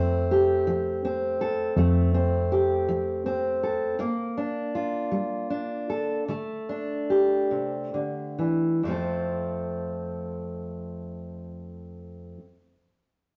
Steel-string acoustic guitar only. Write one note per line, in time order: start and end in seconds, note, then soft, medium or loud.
0.00 0.23 F2 medium
0.00 1.73 A3 medium
0.00 1.04 C4 medium
0.31 1.41 G4 medium
0.67 1.33 F3 medium
1.05 2.13 C4 soft
1.41 1.73 A4 medium
1.77 2.43 F2 medium
1.77 3.94 A3 soft
2.14 3.25 C4 soft
2.52 3.62 G4 medium
2.89 3.54 F3 medium
3.26 3.99 C4 soft
3.63 3.95 A4 soft
3.99 4.66 G2 medium
3.99 6.23 A#3 medium
4.37 5.49 D4 soft
4.75 5.88 F4 soft
5.12 5.80 G3 soft
5.50 6.23 D4 soft
5.90 6.23 A4 soft
6.28 7.00 D3 medium
6.28 8.78 A3 soft
6.69 8.78 D4 soft
7.10 8.78 G4 soft
7.51 7.93 C3 soft
7.94 8.38 D3 soft
8.39 8.84 E3 soft
8.83 12.36 F2 soft
8.83 12.38 F3 soft
8.83 12.40 A3 soft
8.89 12.42 C4 soft
8.89 12.44 A4 soft